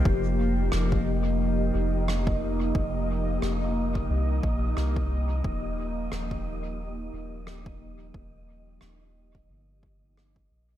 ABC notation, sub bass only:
X:1
M:4/4
L:1/8
Q:"Swing 16ths" 1/4=89
K:Eb
V:1 name="Sub bass" clef=bass
F,,,2 F,,,3 F,,,3 | F,,,2 F,,,2 C,, B,,, C,,2 | E,,,2 E,,,3 E,,,3 | E,,,2 E,,,2 G,,,3 B,,, |]